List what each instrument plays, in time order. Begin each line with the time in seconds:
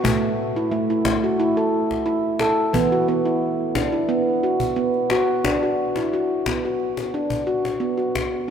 0.04 handpan A2 A3, cajon bass
0.56 handpan E4
0.71 handpan A3
0.90 handpan E4
1.05 handpan A3, cajon bass, cajon slap
1.24 handpan F#4
1.40 handpan E4
1.57 handpan A4
1.91 cajon bass, cajon slap
2.06 handpan E4
2.39 handpan A4, cajon slap
2.73 handpan E3 B3, cajon bass
2.92 handpan F#4
3.08 handpan B3
3.25 handpan E4
3.75 handpan D4, cajon bass, cajon slap
3.92 handpan E4
4.09 handpan B3
4.43 handpan F#4
4.60 cajon bass
4.76 handpan B3, cajon slap
4.94 cajon slap
5.10 handpan F#4, cajon slap
5.28 cajon slap
5.44 handpan D4, cajon bass, cajon slap
5.63 handpan F#4
5.96 handpan E4, cajon slap
6.13 handpan F#4
6.46 handpan B3, cajon bass, cajon slap
6.65 handpan F#4
6.80 cajon slap
6.97 cajon slap
7.14 handpan D4, cajon slap
7.30 cajon bass
7.47 handpan F#4
7.65 cajon slap
7.80 handpan B3
7.98 handpan F#4, cajon slap
8.15 cajon bass, cajon slap